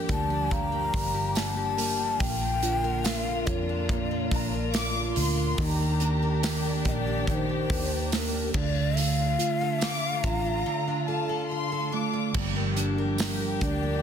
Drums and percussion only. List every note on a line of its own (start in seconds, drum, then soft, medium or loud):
0.09 kick medium
0.09 hi-hat pedal medium
0.09 open hi-hat medium
0.51 kick medium
0.51 hi-hat pedal medium
0.51 open hi-hat medium
0.94 kick loud
0.94 hi-hat pedal medium
0.94 open hi-hat medium
1.35 snare loud
1.35 hi-hat pedal medium
1.35 open hi-hat medium
1.35 tambourine medium
1.78 hi-hat pedal medium
1.78 open hi-hat medium
2.20 kick loud
2.20 hi-hat pedal medium
2.20 open hi-hat medium
2.62 hi-hat pedal medium
2.62 open hi-hat medium
3.04 snare loud
3.04 hi-hat pedal medium
3.04 open hi-hat loud
3.04 tambourine medium
3.47 kick medium
3.47 hi-hat pedal medium
3.47 open hi-hat medium
3.89 kick medium
3.89 hi-hat pedal medium
3.89 open hi-hat medium
4.31 kick loud
4.31 hi-hat pedal medium
4.31 open hi-hat medium
4.74 snare loud
4.74 hi-hat pedal medium
4.74 open hi-hat medium
4.74 tambourine medium
5.16 hi-hat pedal medium
5.16 open hi-hat medium
5.58 kick loud
5.58 hi-hat pedal medium
5.58 open hi-hat medium
6.00 hi-hat pedal medium
6.00 open hi-hat medium
6.43 snare loud
6.43 hi-hat pedal medium
6.43 open hi-hat medium
6.43 tambourine medium
6.85 kick medium
6.85 hi-hat pedal medium
6.85 open hi-hat medium
7.27 kick medium
7.27 hi-hat pedal medium
7.27 open hi-hat medium
7.70 kick loud
7.70 hi-hat pedal medium
7.70 open hi-hat medium
8.12 snare loud
8.12 hi-hat pedal medium
8.12 open hi-hat medium
8.12 tambourine medium
8.54 kick loud
8.54 crash medium
8.97 hi-hat pedal medium
8.97 open hi-hat medium
9.39 hi-hat pedal medium
9.39 open hi-hat medium
9.81 snare loud
9.81 hi-hat pedal medium
9.81 open hi-hat medium
9.81 tambourine medium
10.24 kick medium
10.24 hi-hat pedal medium
10.24 open hi-hat medium
12.34 kick loud
12.34 crash loud
12.76 hi-hat pedal medium
12.76 open hi-hat medium
13.18 snare loud
13.18 hi-hat pedal medium
13.18 open hi-hat medium
13.18 tambourine medium
13.61 kick medium
13.61 hi-hat pedal medium
13.61 open hi-hat medium